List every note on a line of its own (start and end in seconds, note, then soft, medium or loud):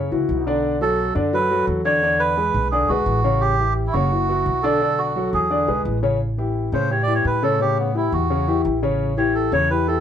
0.11 0.28 C#2 medium
0.11 0.40 E3 medium
0.11 0.40 E4 medium
0.11 0.41 F#4 medium
0.29 1.10 B1 medium
0.47 0.75 D3 medium
0.47 0.75 D4 medium
0.47 0.76 D5 medium
0.81 1.10 F#3 medium
0.81 1.10 F#4 medium
0.81 1.10 A4 medium
0.81 1.14 A4 medium
1.15 1.64 F#2 medium
1.15 1.30 D3 medium
1.15 1.30 D4 medium
1.15 1.30 D5 medium
1.33 1.47 F#3 medium
1.33 1.48 F#4 medium
1.33 1.48 A4 medium
1.33 1.66 B4 medium
1.51 1.79 F#3 medium
1.51 1.79 F#4 medium
1.51 1.79 A4 medium
1.67 2.49 E2 medium
1.85 2.00 D3 medium
1.85 2.00 D4 medium
1.85 2.21 C#5 loud
1.85 2.00 D5 medium
2.03 2.31 D3 medium
2.03 2.31 D4 medium
2.03 2.32 D5 medium
2.19 2.68 B4 medium
2.37 2.66 G#3 medium
2.37 2.66 G#4 medium
2.37 2.66 B4 medium
2.54 2.87 B1 medium
2.71 2.86 D3 medium
2.71 2.87 D4 medium
2.71 2.90 G#4 medium
2.71 2.87 D5 medium
2.89 3.05 B1 medium
2.89 3.18 G#3 medium
2.89 3.43 F#4 medium
2.89 3.18 G#4 medium
2.89 3.19 B4 medium
3.06 3.88 A1 medium
3.24 3.53 C#3 medium
3.24 3.53 C#4 medium
3.24 3.53 C#5 medium
3.41 3.74 G4 medium
3.59 3.88 E3 medium
3.59 3.88 E4 medium
3.59 3.88 G4 medium
3.87 3.94 E4 medium
3.93 4.42 F#1 medium
3.93 4.08 C#3 medium
3.93 4.09 C#4 medium
3.93 4.65 F#4 medium
3.93 4.09 C#5 medium
4.11 4.26 E3 medium
4.11 4.26 E4 medium
4.11 4.26 F#4 medium
4.29 4.58 E3 medium
4.29 4.58 E4 medium
4.29 4.58 F#4 medium
4.46 5.27 B1 medium
4.63 4.78 D3 medium
4.63 4.78 D4 medium
4.63 4.99 A4 medium
4.63 4.78 D5 medium
4.81 5.10 D3 medium
4.81 5.10 D4 medium
4.81 5.10 D5 medium
4.98 5.31 F#4 medium
5.16 5.44 F#3 medium
5.16 5.45 F#4 medium
5.16 5.45 A4 medium
5.33 5.66 E2 medium
5.33 5.82 G#4 medium
5.50 5.65 D3 medium
5.50 5.65 D4 medium
5.50 5.65 D5 medium
5.68 5.84 B1 medium
5.68 5.97 G#3 medium
5.68 5.97 G#4 medium
5.68 5.97 B4 medium
5.85 6.67 A1 medium
6.03 6.17 C#3 medium
6.03 6.17 C#4 medium
6.03 6.18 C#5 medium
6.38 6.67 E3 medium
6.38 6.67 E4 medium
6.38 6.67 G4 medium
6.72 7.21 A2 medium
6.72 6.88 C#3 medium
6.72 6.88 C#4 medium
6.72 6.90 C5 medium
6.72 6.88 C#5 medium
6.90 7.05 E3 medium
6.90 7.05 E4 medium
6.90 7.05 G4 medium
6.90 7.02 C#5 medium
7.03 7.14 D5 medium
7.07 7.36 E3 medium
7.07 7.36 E4 medium
7.07 7.37 G4 medium
7.15 7.26 C#5 medium
7.25 8.07 A2 medium
7.25 7.43 B4 medium
7.43 7.57 C#3 medium
7.43 7.57 C#4 medium
7.43 7.60 A4 medium
7.43 7.58 C#5 medium
7.60 7.89 C#3 medium
7.60 7.89 C#4 medium
7.60 7.78 G4 medium
7.60 7.89 C#5 medium
7.79 7.95 B3 medium
7.95 8.24 E3 medium
7.95 8.24 E4 medium
7.95 8.13 E4 medium
7.95 8.24 G4 medium
8.12 8.61 E2 medium
8.12 8.62 F#4 medium
8.30 8.45 C#3 medium
8.30 8.45 C#4 medium
8.30 8.45 C#5 medium
8.48 8.76 E3 medium
8.48 8.77 E4 medium
8.48 8.77 G4 medium
8.65 9.47 A1 medium
8.83 9.11 C#3 medium
8.83 9.12 C#4 medium
8.83 9.12 C#5 medium
9.17 9.46 E3 medium
9.17 9.46 E4 medium
9.17 9.47 G4 medium
9.17 9.35 C#5 medium
9.35 9.52 A4 medium
9.52 10.00 E2 medium
9.52 9.67 C#3 medium
9.52 9.67 C#4 medium
9.52 9.67 C#5 medium
9.52 9.70 C#5 loud
9.70 9.84 E3 medium
9.70 9.85 E4 medium
9.70 9.85 G4 medium
9.70 9.87 B4 medium
9.88 10.00 E3 medium
9.88 10.00 E4 medium
9.88 10.00 G4 medium
9.88 10.00 A4 medium